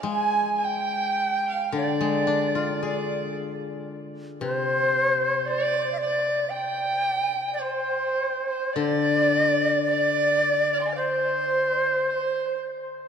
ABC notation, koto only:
X:1
M:2/4
L:1/16
Q:1/4=55
K:none
V:1 name="Koto" clef=bass
_A,6 D, A, | D F _A6 | C,8- | C,4 z4 |
D,8- | D,4 z4 |]